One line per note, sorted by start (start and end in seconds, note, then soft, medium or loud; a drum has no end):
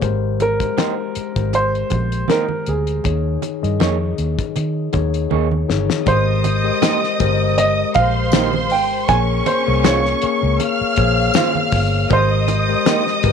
0.01 0.65 G#1 loud
0.01 0.37 G#3 medium
0.01 0.37 G4 medium
0.01 0.37 A#4 medium
0.01 0.37 C5 loud
0.01 kick medium
0.01 closed hi-hat medium
0.01 muted conga soft
0.40 1.58 A#4 loud
0.40 closed hi-hat medium
0.40 muted conga soft
0.60 1.06 G#3 medium
0.60 1.06 G4 medium
0.60 1.06 A#4 medium
0.60 1.07 C5 medium
0.60 kick medium
0.60 closed hi-hat soft
0.77 0.92 A#3 medium
0.77 0.92 D#4 medium
0.77 0.93 G4 medium
0.77 0.93 C5 medium
0.77 snare loud
0.77 closed hi-hat medium
0.77 high conga medium
1.15 muted fingered electric bass stroke soft
1.15 closed hi-hat medium
1.36 1.82 G#1 medium
1.36 2.28 G#3 medium
1.36 2.28 G4 medium
1.36 2.28 A#4 medium
1.36 2.28 C5 medium
1.36 kick medium
1.36 closed hi-hat soft
1.53 2.32 C5 loud
1.53 closed hi-hat medium
1.53 muted conga soft
1.75 closed hi-hat soft
1.90 2.23 A#1 medium
1.90 kick medium
1.90 closed hi-hat medium
1.90 muted conga soft
1.90 low conga medium
2.12 closed hi-hat soft
2.28 2.43 A#3 medium
2.28 2.44 D#4 medium
2.28 2.44 G4 medium
2.28 2.69 A#4 medium
2.28 2.44 C5 medium
2.28 snare medium
2.28 closed hi-hat medium
2.28 high conga medium
2.49 high conga medium
2.66 2.99 D2 medium
2.66 5.28 G#4 medium
2.66 closed hi-hat medium
2.87 closed hi-hat soft
3.04 3.36 D#2 loud
3.04 3.40 D#3 medium
3.04 3.40 D#4 medium
3.04 3.40 G#4 medium
3.04 3.40 C#5 medium
3.04 kick medium
3.04 closed hi-hat medium
3.04 muted conga soft
3.42 closed hi-hat medium
3.42 muted conga medium
3.62 3.78 G2 medium
3.62 4.43 D#3 medium
3.62 4.44 D#4 medium
3.62 4.44 G#4 medium
3.62 4.44 D#5 medium
3.62 closed hi-hat soft
3.80 4.12 F2 medium
3.80 3.95 A#3 medium
3.80 3.95 D#4 medium
3.80 3.95 G#4 medium
3.80 3.96 C#5 medium
3.80 snare loud
3.80 closed hi-hat medium
3.80 high conga medium
4.18 4.35 D#2 medium
4.18 closed hi-hat medium
4.39 kick medium
4.39 closed hi-hat soft
4.56 4.88 D#3 loud
4.56 closed hi-hat medium
4.56 muted conga soft
4.93 5.26 D#2 medium
4.93 5.40 D#3 medium
4.93 5.40 D#4 medium
4.93 5.41 G#4 medium
4.93 5.41 C#5 loud
4.93 kick medium
4.93 closed hi-hat medium
4.93 muted conga soft
4.93 low conga medium
5.14 closed hi-hat medium
5.30 5.63 D#2 medium
5.30 5.46 A#3 medium
5.30 5.46 D#4 medium
5.30 5.46 G#4 medium
5.30 5.47 C#5 medium
5.30 high conga medium
5.51 high conga medium
5.68 5.87 G1 medium
5.68 5.93 D#3 medium
5.68 5.93 D#4 medium
5.68 5.93 G#4 medium
5.68 5.94 C#5 medium
5.68 snare medium
5.89 snare medium
5.89 high conga soft
6.06 6.70 G#1 loud
6.06 6.41 G#3 medium
6.06 6.42 G4 medium
6.06 6.42 A#4 medium
6.06 6.42 C5 medium
6.06 7.63 C5 medium
6.06 7.92 D#5 medium
6.06 7.92 D#6 medium
6.06 kick loud
6.06 closed hi-hat medium
6.06 muted conga medium
6.44 closed hi-hat medium
6.44 muted conga medium
6.64 6.99 G#3 medium
6.64 6.99 G4 medium
6.64 7.00 A#4 medium
6.64 7.00 D#5 medium
6.82 6.97 A#3 medium
6.82 6.97 D#4 medium
6.82 6.97 G4 medium
6.82 6.98 C5 medium
6.82 snare loud
6.82 closed hi-hat loud
6.82 tambourine medium
6.82 high conga medium
7.04 snare soft
7.19 7.83 G1 medium
7.19 8.14 G#3 medium
7.19 8.14 G4 medium
7.19 8.15 A#4 medium
7.19 8.15 C5 loud
7.19 kick loud
7.19 closed hi-hat medium
7.58 7.97 D#5 medium
7.58 closed hi-hat loud
7.58 muted conga medium
7.94 8.72 A#1 medium
7.94 9.07 C5 medium
7.94 8.73 F5 loud
7.94 9.07 C6 medium
7.94 kick medium
7.94 closed hi-hat medium
8.32 8.48 A#3 medium
8.32 8.48 D#4 medium
8.32 8.48 G4 medium
8.32 8.49 C5 medium
8.32 snare loud
8.32 closed hi-hat medium
8.32 tambourine medium
8.32 high conga medium
8.53 high conga medium
8.70 9.03 G#1 medium
8.70 9.10 G5 medium
8.70 open hi-hat medium
9.08 9.40 A#1 loud
9.08 9.44 A#3 medium
9.08 10.57 C#4 medium
9.08 9.44 G#4 medium
9.08 9.44 A#4 medium
9.08 9.44 C#5 loud
9.08 9.17 G#5 loud
9.08 10.57 C#6 medium
9.08 kick loud
9.08 closed hi-hat medium
9.08 muted conga medium
9.46 9.86 C5 medium
9.46 closed hi-hat medium
9.46 muted conga medium
9.66 10.13 C2 medium
9.66 10.01 A#3 medium
9.66 10.02 G#4 medium
9.66 10.02 A#4 medium
9.66 10.02 C#5 medium
9.84 9.99 G#3 medium
9.84 9.99 C#4 medium
9.84 9.99 F4 medium
9.84 10.00 C5 medium
9.84 10.56 C#5 medium
9.84 snare loud
9.84 closed hi-hat loud
9.84 tambourine medium
9.84 high conga medium
10.05 snare soft
10.22 10.69 A#3 medium
10.22 10.69 G#4 medium
10.22 10.70 A#4 medium
10.22 10.70 C#5 medium
10.22 muted fingered electric bass stroke soft
10.22 closed hi-hat medium
10.43 10.57 C#2 medium
10.60 12.08 F5 medium
10.60 12.08 F6 medium
10.60 closed hi-hat medium
10.60 muted conga medium
10.81 muted fingered electric bass stroke soft
10.96 11.29 A#1 medium
10.96 11.68 A#3 medium
10.96 11.68 G#4 medium
10.96 11.68 C5 medium
10.96 11.68 C#5 medium
10.96 kick loud
10.96 closed hi-hat medium
11.34 11.50 G#3 medium
11.34 11.50 C#4 medium
11.34 11.51 F4 medium
11.34 11.51 C5 medium
11.34 snare loud
11.34 closed hi-hat loud
11.34 tambourine medium
11.34 high conga medium
11.55 high conga medium
11.72 12.04 G1 medium
11.72 kick medium
11.72 open hi-hat medium
12.10 12.74 G#1 loud
12.10 12.46 G#3 medium
12.10 12.46 G4 medium
12.10 12.46 A#4 medium
12.10 12.46 C5 medium
12.10 13.32 C5 loud
12.10 13.32 D#5 medium
12.10 13.32 D#6 medium
12.10 kick loud
12.10 closed hi-hat medium
12.10 muted conga medium
12.48 closed hi-hat medium
12.48 muted conga medium
12.69 13.03 G#3 medium
12.69 13.04 G4 medium
12.69 13.04 A#4 medium
12.69 13.04 D#5 medium
12.86 13.01 A#3 medium
12.86 13.01 D#4 medium
12.86 13.01 G4 medium
12.86 13.02 C5 medium
12.86 snare loud
12.86 closed hi-hat loud
12.86 tambourine medium
12.86 high conga medium
13.07 snare soft
13.23 13.32 G1 medium
13.23 13.32 G#3 medium
13.23 13.32 G4 medium
13.23 13.32 A#4 medium
13.23 13.31 B4 medium
13.23 kick loud
13.23 closed hi-hat medium